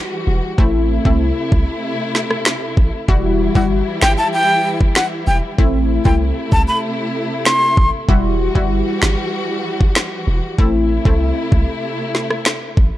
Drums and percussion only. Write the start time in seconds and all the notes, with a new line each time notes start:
0.58 kick
1.05 kick
1.52 kick
2.15 snare
2.31 cross-stick
2.45 finger snap, snare
2.77 kick
3.09 kick
3.55 kick
4.02 finger snap, snare
4.81 kick
4.95 finger snap, snare
5.59 kick
6.05 kick
6.52 kick
7.45 finger snap, snare
7.77 kick
8.09 kick
8.55 kick
9.02 finger snap, snare
9.81 kick
9.95 finger snap, snare
10.59 kick
11.05 kick
11.52 kick
12.15 snare
12.30 cross-stick
12.45 finger snap, snare
12.77 kick